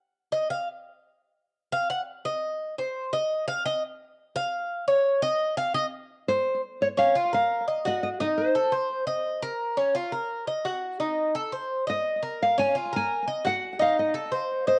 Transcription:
0.32 D#5
0.50 F5
1.73 F5
1.90 F#5
2.25 D#5
2.78 C5
3.13 D#5
3.48 F5
3.66 D#5
4.36 F5
4.88 C#5
5.22 D#5
5.57 F5
5.74 D#5
6.28 C5
6.82 C#5
6.97 C#4 F5
7.15 F4
7.33 A#4 F5
7.68 D#5
7.85 F#4 D#5
8.03 D#5
8.20 D#4 D#5
8.37 C5
8.55 A4
8.72 C5
9.07 D#5
9.42 A#4
9.77 C#4
9.95 F4
10.12 A#4
10.47 D#5
10.65 F#4
11.00 D#4
11.35 A4
11.52 C5
11.87 D#5
12.23 A#4
12.42 F5
12.58 C#4 G#5
12.75 F4
12.93 A#4 G#5
13.28 D#5
13.45 F#4 F#5
13.79 D#4 F5
13.99 D#5
14.14 A4
14.32 C5
14.67 C5 D#5

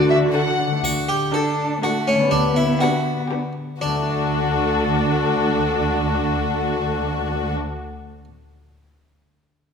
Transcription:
Already playing: D3 D4 F#4
0.09 D5 E5
0.33 F#4 A4 F#5
0.60 D4
0.67 D3
0.72 A3
0.76 D4
0.80 D2 F#4
0.85 triangle
1.09 G4
1.34 D4 F#4 A4
1.83 A3 D4 F#4 A4
2.08 C#4
2.15 D3
2.19 B3
2.23 D4
2.28 D2 D4 G4
2.33 B3
2.56 E4
2.81 D4 F#4 G4 B4
3.31 B3 D4 G4 B4
3.80 D2 D3 D4 F#4 A4
3.88 A3
3.95 D4
4.02 F#4
4.09 D5

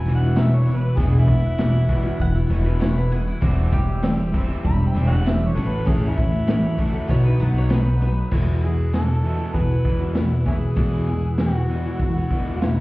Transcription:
Already playing: B4 F#5 G#5 E6
0.05 E1 E2 B2 E3 B3 E4 F#4, open hi-hat
0.15 F#5
0.22 E3 B3 E4 F#4
0.36 E2 B2 E3 B3 E4 F#4 E5, snare, open hi-hat
0.56 C#5
0.66 E2 B2 E3 B3, open hi-hat
0.71 E4 F#4
0.77 B4
0.96 E1 E2 B2 E3 B3 E4 F#4 G#4 F#6, kick, open hi-hat
1.19 E4
1.28 E2 B2 E3 B3 E4 F#4, kick, open hi-hat
1.58 E2 B2 E3 B3 E4 F#4, snare, open hi-hat
1.73 E3 B3 E4 F#4
1.88 E2 B2 E3 B3 E4 F#4, kick, open hi-hat
2.03 E3 B3 E4 F#4
2.19 E1 E2 B2 F#5, kick, open hi-hat
2.34 E3 B3 E4 F#4 E5
2.49 E1 E2 B2 E3 B3 E4 F#4 C#5, open hi-hat
2.64 E3 B3 E4 F#4 B4
2.79 E2 B2 E3 B3 E4 F#4 C#5, snare, open hi-hat
2.98 B4
3.10 E2 B2 E3 B3 E4 F#4 G#4, open hi-hat
3.28 E4
3.41 E1 E3 G3 C4 F#4 C5 E5 E6, kick, open hi-hat
3.71 E3 G3 C4 G4, kick, open hi-hat
4.02 E3 G3 C4 G4, snare, open hi-hat
4.17 G3 C4 G4
4.33 E3 G3 C4 G4, kick, open hi-hat
4.48 G3 C4 G4
4.63 E1 E3 G3 B5, kick, open hi-hat
4.79 G3 C4 G4
4.87 G5
4.94 E1 E3 G3 C4 G4, open hi-hat
5.07 G4 C#5 D#5 F#5
5.11 G3 C4
5.24 E3 G3 C4 G4, snare, open hi-hat
5.28 E5
5.48 C#5
5.53 A1 A2 E3 A3 C#4 A4 F#5 C#6
5.57 F#4, open hi-hat
5.68 B4
5.85 A2 E3 A3 C#4 F#4, kick, open hi-hat
5.89 G#4
6.09 E4
6.15 A2 E3 A3 C#4 F#4, kick, open hi-hat
6.47 A2 E3 A3 C#4 F#4, snare, open hi-hat
6.78 A2 E3 A3 C#4 F#4, kick, open hi-hat
6.92 A3 C#4 F#4
7.07 B1 B2 F#3 B3 D#4 F#4 B4 C#5 D#6, kick, open hi-hat
7.22 B3 D#4 F#4 B4
7.38 B1 B2 F#3 B3 D#4 F#4 F#5, open hi-hat
7.54 B3 D#4 F#4 C#5
7.69 B2 F#3 B3 D#4 F#4, snare, open hi-hat
7.74 B4
8.00 B2 F#3 B3 D#4 F#4, open hi-hat
8.05 B4
8.28 E2 B2 B4 F#5 E6, kick, crash
8.32 E3 B3 E4 F#4
8.62 E2 B2 E3 B3 E4 F#4 G#4
8.92 E2 B2 E3 B3 E4 F#4 A4, snare, open hi-hat
9.23 E2 B2 E3 B3 E4 F#4
9.39 E3 B3 E4 F#4
9.54 E2 B2 F#4 G#4 B4, kick, open hi-hat
9.69 E3 B3 E4 F#4
9.84 E2 B2 E3 B3 E4 F#4, kick
10.00 E3 B3 E4 F#4
10.14 E2 B2 E3 B3 E4 F#4, snare, open hi-hat
10.45 E2 B2 E3 B3 C#4 E4 F#4 G#4, kick
10.76 E2 B2 E3 B3 E4 F#4, kick, open hi-hat
11.07 E2 B2 E3 B3 E4 F#4
11.37 E2 B2 E3 B3 E4 F#4, snare, open hi-hat
11.42 F#4
11.53 E3 B3 E4 F#4
11.68 E2 B2 E3 B3 E4
11.72 F#4
11.85 E3 B3 E4 F#4
11.99 E2 B2 F#4, kick, open hi-hat
12.15 E3 B3 E4 F#4
12.30 E2 B2 E3 B3 E4 F#4, kick
12.46 E3 B3 E4 F#4
12.61 E2 B2 E3 B3 E4 F#4, snare, open hi-hat

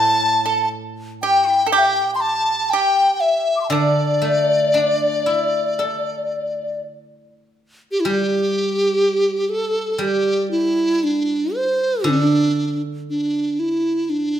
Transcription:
Already playing: A2 A4 A5
0.46 A4
1.22 G4 G5
1.50 E4
1.67 A4
1.71 G4 G5
1.79 E5
1.86 G5
2.15 C6
2.21 A5
2.70 G4 G5
3.17 E5 G5
3.24 E5
3.56 D6
3.61 C6
3.65 G5 A5
3.70 D3 D4 D5 E5
3.74 D5
4.22 A3
4.74 D4
5.26 E4
5.79 A4
7.91 G4
8.00 E4
8.05 G3 G4
9.49 A4
9.92 A4
9.98 G3 G4
10.51 E4
11.04 D4
11.55 C5
12.04 D3 D4
13.10 D4
13.59 E4
14.10 D4

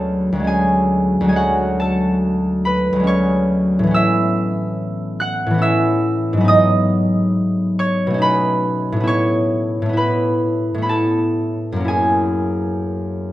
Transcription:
Already playing: D2 F#3 G#3 A3 C#4 D4 F#4 A4 B4 F#5 A5 B5
0.33 D2 F#3
0.39 G#3
0.44 C#4 G#5
0.48 G#4
1.21 D2 F#3
1.28 G#3 G#5
1.32 C#4
1.36 F#4 F#5
1.80 A4 A5
2.65 B4 B5
2.93 D2 F#3
3.00 G#3 C#4
3.07 C#5 C#6
3.79 A2
3.84 E3 B3
3.91 C#4 E6
3.96 E5
5.20 F#5 F#6
5.47 A2
5.51 E3 B3
5.58 C#4 E6
5.63 E5
6.33 G#2
6.37 F#3 B3
6.44 D#4 D#6
6.49 D#5
7.79 C#5 C#6
8.07 B2 A3
8.14 C#4
8.18 D#4 B5
8.23 B4
8.92 A2 A3
9.00 B3 E4
9.07 C#5 C#6
9.82 A2 A3
9.89 B3
9.93 E4 B5
9.98 B4
10.75 A2 A3
10.82 B3 B5
10.86 E4 A5
10.91 A4
11.72 F#2 A#3
11.80 C#4
11.85 E4 G#4 G#5

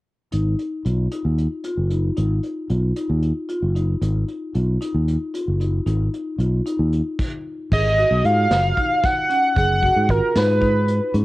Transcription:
0.32 G#1 D#4, closed hi-hat
0.59 closed hi-hat
0.85 B1 F4, closed hi-hat
1.11 D#4, closed hi-hat
1.25 D#2
1.38 closed hi-hat
1.64 F4, closed hi-hat
1.77 F#1
1.90 D#4, closed hi-hat
2.17 G#1 D#4, closed hi-hat
2.43 closed hi-hat
2.70 B1 F4, closed hi-hat
2.96 D#4, closed hi-hat
3.09 D#2
3.22 closed hi-hat
3.49 F4, closed hi-hat
3.62 F#1
3.75 D#4, closed hi-hat
4.01 G#1 D#4, closed hi-hat
4.28 closed hi-hat
4.54 B1 F4, closed hi-hat
4.81 D#4, closed hi-hat
4.94 D#2
5.08 closed hi-hat
5.34 F4, closed hi-hat
5.48 F#1
5.60 D#4, closed hi-hat
5.86 G#1 D#4, closed hi-hat
6.14 closed hi-hat
6.38 B1 F4, closed hi-hat
6.66 D#4, closed hi-hat
6.79 D#2
6.93 closed hi-hat
7.19 kick, crash
7.72 G#1 G#4 D#5, kick, crash
7.98 F#4, closed hi-hat
8.11 B1
8.24 G#2 F4 F5, closed hi-hat
8.51 F#1, snare, closed hi-hat
8.77 D#4, kick, closed hi-hat
9.04 F#5, kick, snare, closed hi-hat
9.30 C#4, closed hi-hat
9.56 F#1 G#4 F#5, kick, closed hi-hat
9.83 F#4, kick, closed hi-hat
9.96 G#2
10.09 G#1 F4 A#4, kick, closed hi-hat
10.36 G#2 B4, snare, closed hi-hat
10.61 D#4, kick, closed hi-hat
10.88 closed hi-hat
11.14 G#2 C#4, closed hi-hat

